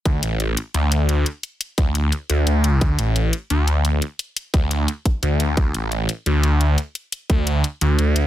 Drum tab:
HH |xxxxxxxx|xxxxxxxx|xxxxxxxx|xxxxxxxx|
BD |o-------|--o-----|o-------|--o--o--|

HH |xxxxxxxx|xxxxxxxx|
BD |o-------|--o-----|